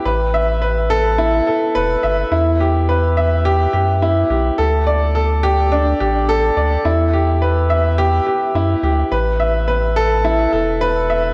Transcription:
<<
  \new Staff \with { instrumentName = "Upright piano" } { \time 4/4 \key e \minor \tempo 4 = 106 b'8 e''8 b'8 a'8 e'8 a'8 b'8 e''8 | e'8 g'8 b'8 e''8 g'8 g'8 e'8 g'8 | a'8 d''8 a'8 g'8 d'8 g'8 a'8 d''8 | e'8 g'8 b'8 e''8 g'8 g'8 e'8 g'8 |
b'8 e''8 b'8 a'8 e'8 a'8 b'8 e''8 | }
  \new Staff \with { instrumentName = "Sub bass" } { \clef bass \time 4/4 \key e \minor a,,2~ a,,8 r8 e,,8 g,,8 | e,2~ e,8 fis,4 b,,8 | d,2~ d,8 a,,4 d,8 | e,2~ e,8 r8 fis,8 d,8 |
a,,2~ a,,8 e,,4. | }
>>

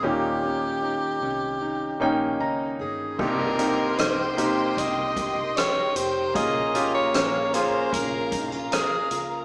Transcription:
<<
  \new Staff \with { instrumentName = "String section" } { \time 4/4 \key c \phrygian \tempo 4 = 76 << { r1 | <ees'' g'' c'''>1 | <f'' bes''>1 | } \\ { r1 | bes'1~ | bes'1 | } >> }
  \new Staff \with { instrumentName = "Alto saxophone" } { \time 4/4 \key c \phrygian g'2. r8 aes'8 | bes'4 c''4 ees''4 des''8 c''8 | ees''8. des''8. c''8 bes'8. r16 aes'8. r16 | }
  \new Staff \with { instrumentName = "Steel-string acoustic guitar" } { \time 4/4 \key c \phrygian ees8 des'8 ees'8 des'8 ees'8 des'8 ees'8 des'8 | c8 g'8 ees'8 g'8 c''8 g'4 g'8 | bes8 f'8 des'8 f'8 aes'8 ees'16 f'16 aes'8 f'8 | }
  \new Staff \with { instrumentName = "Grand piano" } { \time 4/4 \key c \phrygian <bes des' ees' g'>2 r8 <bes des' ees' g''>4. | <bes c' ees' g'>8 <bes c' ees' g'>4 <c bes ees' g'>2 r8 | <bes des' f' aes'>8 <bes des' f' g'>4 <bes des' f' aes'>2 r8 | }
  \new Staff \with { instrumentName = "Grand piano" } { \clef bass \time 4/4 \key c \phrygian bes,4. r4. bes''4 | g,4. r2 r8 | r1 | }
  \new Staff \with { instrumentName = "Fingered electric bass" } { \clef bass \time 4/4 \key c \phrygian ees,4. c,4 bes,,8 des,8 g,,8 | c,4 c,4 c,4. f,,8 | bes,,4 bes,,4 bes,,4. des,8 | }
  \new DrumStaff \with { instrumentName = "Drums" } \drummode { \time 4/4 r4 r4 r4 r4 | <cymc bd>8 hh8 <hh ss>8 hh8 <hh bd>8 <hh bd>8 <hh ss>8 hh8 | <hh bd>8 hh8 <hh ss>8 hh8 <hh bd>8 <hh bd>8 <hh ss>8 hh8 | }
>>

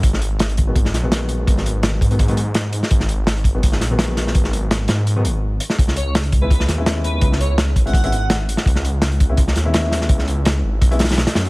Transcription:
<<
  \new Staff \with { instrumentName = "Digital synth lead" } { \time 4/4 \key cis \dorian \tempo 4 = 167 r1 | r1 | r1 | r1 |
r8 cis''16 cis''16 r8. b'8 r4 r16 b'8 | r8 cis''16 cis''16 r8. fis''4. r8. | r1 | r1 | }
  \new Staff \with { instrumentName = "Grand piano" } { \time 4/4 \key cis \dorian r4. r16 <dis fis gis b>16 r8. <dis fis gis b>4~ <dis fis gis b>16~ | <dis fis gis b>4.~ <dis fis gis b>16 <dis fis gis b>16 r16 <dis fis gis b>16 r4. | r4. r16 <dis fis gis b>16 r8. <dis fis gis b>4~ <dis fis gis b>16~ | <dis fis gis b>4.~ <dis fis gis b>16 r8 <dis fis gis b>16 r4. |
r4. r16 <gis b cis' e'>16 r8. <gis b cis' e'>4~ <gis b cis' e'>16~ | <gis b cis' e'>4.~ <gis b cis' e'>16 <gis b cis' e'>16 r16 <gis b cis' e'>16 r4. | r4. r16 <gis b cis' e'>16 r8. <gis b cis' e'>4~ <gis b cis' e'>16~ | <gis b cis' e'>4.~ <gis b cis' e'>16 r8 <gis b cis' e'>16 r4. | }
  \new Staff \with { instrumentName = "Detuned saw bass" } { \clef bass \time 4/4 \key cis \dorian gis,,2~ gis,,8 ais,,4. | gis,,4. gis,2 r8 | gis,,2~ gis,,8 ais,,4. | gis,,4. gis,4 gis,,4 r8 |
cis,2~ cis,8 dis,4. | cis,4. gis,,2 r8 | cis,2~ cis,8 dis,4. | cis,4. gis,,8 b,,4 r8 fis,8 | }
  \new DrumStaff \with { instrumentName = "Drums" } \drummode { \time 4/4 <hh bd>16 sn16 hh8 <hh sn>16 hh16 <hh bd>8 <hh bd>16 sn16 <hh sn>8 <hh sn>8 hh8 | <hh bd>16 sn16 hh8 <hh sn>8 <hh bd>16 hh16 <hh bd>16 hh16 hh8 <hh sn>8 hh16 sn16 | <hh bd>16 sn16 hh8 <hh sn>16 hh16 <hh bd>8 <hh bd>16 sn16 <hh sn>8 <hh sn>8 <hh sn>16 sn16 | <hh bd>16 sn16 hh8 <hh sn>8 <hh sn>8 hh8 hh8 r8 hh16 sn16 |
<hh bd>16 sn16 hh8 <hh sn>16 hh16 <hh bd>8 <hh bd>16 sn16 <hh sn>8 <hh sn>8 hh8 | <hh bd>16 sn16 hh8 <hh sn>8 <hh bd>16 hh16 <hh bd>16 hh16 hh8 <hh sn>8 hh16 sn16 | <hh bd>16 sn16 hh8 <hh sn>16 hh16 <hh bd>8 <hh bd>16 sn16 <hh sn>8 <hh sn>8 <hh sn>16 sn16 | <hh bd>16 sn16 hh8 <hh sn>4 <hh bd>16 hh16 <hh sn>32 <hh sn>32 <hh sn>32 <hh sn>32 <hh sn>16 <hh sn>16 <hh sn>16 hh16 | }
>>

